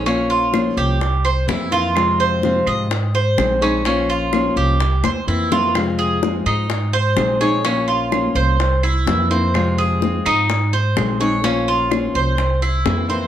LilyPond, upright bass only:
\new Staff \with { instrumentName = "Upright bass" } { \clef bass \time 4/4 \key c \phrygian \tempo 4 = 126 bes,,4. c,4. f,4~ | f,4. aes,4. bes,,4~ | bes,,4. c,4 e,8 f,4~ | \key f \minor f,4. aes,4. bes,,4~ |
bes,,4. c,4. f,4~ | f,4. aes,4. bes,,4~ | bes,,4. c,4. f,4 | }